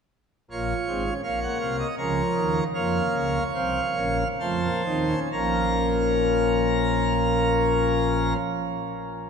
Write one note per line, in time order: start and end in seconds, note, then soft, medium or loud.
0.51 0.73 A#1 medium
0.51 0.73 A#2 medium
0.51 0.73 A#3 medium
0.51 1.13 F4 medium
0.51 1.13 C#5 medium
0.87 1.10 G#1 medium
0.87 1.10 G#2 medium
0.87 1.03 C4 medium
1.05 1.21 C#4 medium
1.23 1.46 A#1 medium
1.23 1.46 A#2 medium
1.23 1.87 A#3 medium
1.23 1.87 C#5 medium
1.23 1.39 F5 medium
1.42 1.58 F#5 medium
1.60 1.83 C2 medium
1.60 1.84 C3 medium
1.60 1.76 F5 medium
1.79 1.95 D#5 medium
1.98 2.21 C#2 medium
1.98 2.21 C#3 medium
1.98 2.64 F3 medium
1.98 2.64 A#4 medium
1.98 2.64 C#5 medium
2.36 2.60 D#2 medium
2.36 2.60 D#3 medium
2.74 2.99 F2 medium
2.74 2.99 F3 medium
2.74 3.43 A#3 medium
2.74 4.17 C#5 medium
2.74 3.43 F5 medium
3.14 3.39 C#2 medium
3.14 3.39 C#3 medium
3.54 3.80 C2 medium
3.54 3.80 C3 medium
3.54 3.80 C4 medium
3.54 4.28 F5 medium
3.96 4.23 A#1 medium
3.96 4.24 A#2 medium
3.96 4.23 C#4 medium
4.40 4.68 F2 medium
4.40 4.68 F3 medium
4.40 4.59 A3 medium
4.40 5.20 C5 medium
4.40 5.20 A5 medium
4.62 4.82 A#3 medium
4.85 5.14 D#2 medium
4.85 5.15 D#3 medium
4.85 5.05 C4 medium
5.08 5.29 C#4 medium
5.32 8.34 A#1 medium
5.32 8.34 A#2 medium
5.32 8.37 F3 medium
5.32 8.37 A#3 medium
5.32 8.33 C#4 medium
5.32 8.33 A#4 medium
5.32 8.34 A#5 medium